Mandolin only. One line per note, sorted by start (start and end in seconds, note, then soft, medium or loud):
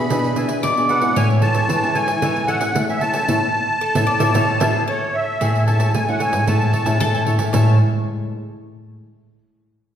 0.00 0.68 B4 medium
0.63 1.16 D5 loud
1.16 3.90 C#5 medium
3.81 4.09 A4 medium
4.07 4.34 D5 medium
4.34 4.62 C#5 medium
4.60 4.87 G#4 medium
4.88 5.37 A4 medium
5.41 6.96 G#4 medium
7.00 7.50 A4 loud
7.53 7.78 C#5 medium